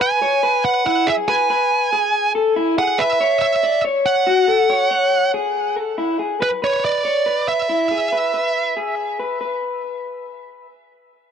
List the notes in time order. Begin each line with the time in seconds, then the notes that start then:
Already playing: B4
0.01 G#5
0.22 C#5
0.43 B4
0.65 F#5
0.86 E4 F#5
1.07 G#4 E5
1.28 B4 G#5
1.50 B4
1.93 G#4
2.35 A4
2.56 E4
2.78 G#4 F#5
2.99 B4 E5
3.21 C#5
3.42 E5
3.63 D5
3.85 C#5
4.06 F#5
4.27 F#4
4.48 A4
4.70 C#5
4.91 C#5
5.34 G#4
5.76 A4
5.98 E4
6.19 G#4
6.40 B4
6.62 B4 C#5
6.85 D5
7.05 C#5
7.26 B4
7.48 E5
7.69 E4
7.91 G#4
8.12 B4
8.34 B4
8.77 G#4
9.19 B4
9.41 B4